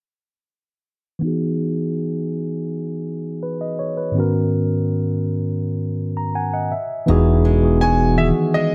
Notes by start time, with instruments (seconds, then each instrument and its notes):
1.19 tine electric piano E3 B3
1.23 tine electric piano D#4 F#4 G#4
3.43 tine electric piano B4
3.61 tine electric piano D#5
3.79 tine electric piano C#5
3.97 tine electric piano B4
4.12 tine electric piano G#2 D#3 B3
4.17 tine electric piano C#4 F#4 A#4
6.17 tine electric piano A#5
6.35 tine electric piano F#5 G#5
6.53 tine electric piano D#5 F#5
6.72 tine electric piano E5
7.06 analog synth bass E1, tine electric piano E3 B3 D#4 F#4, steel-string acoustic guitar E3
7.10 tine electric piano G#4
7.45 steel-string acoustic guitar G#3
7.61 tine electric piano E3 B3 D#4 F#4
7.65 tine electric piano G#4
7.81 steel-string acoustic guitar G#3 F#4, grand piano G#5
8.16 tine electric piano D#3 E3 B3 F#4, grand piano E5
8.20 tine electric piano G#4
8.54 steel-string acoustic guitar G#3, grand piano D#5